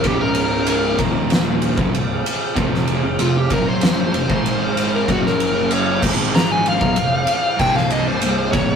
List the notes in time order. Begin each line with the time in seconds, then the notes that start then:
0.03 C#1 C#2 G#2 C#3 G4, kick, ride
0.21 A#4
0.35 ride
0.67 A#4, ride
0.98 D#1 D#2 A#2 D#3, kick, ride
1.30 snare, ride
1.62 ride
1.78 F#1 F#2 C#3, kick
1.94 C1 C2 G2, ride
2.26 ride
2.56 F1 F2 C3 F3, kick, ride
2.75 snare
2.87 ride
3.03 F1 F2 C3
3.19 F1 F2 C3 F4, ride
3.38 G4
3.50 F#1 F#2 C#3 F#3 A#4, kick, ride
3.68 C5
3.81 snare, ride
4.13 F1 F2 C3, ride
4.29 G#1 G#2 D#3 G#3, kick
4.46 ride
4.77 ride
4.95 A#4
5.08 F#1 F#2 C#3 F#3 F#4, kick, ride
5.27 A#4, snare
5.40 ride
5.71 C#5, ride
6.03 G#1 G#2 D#3 G#3, kick, crash
6.35 A#5, snare
6.52 G#5
6.66 F5, ride
6.81 B1 B2 F#3, kick
6.96 F1 F2 C3, ride
7.27 ride
7.59 C1 C2 G2 C3 G5, kick, crash
7.75 F5, snare
7.90 D#5, ride
8.05 C1 C2 G2 C5
8.21 C1 C2 G2, ride
8.52 C#1 C#2 G#2 C#3 C#5, kick, ride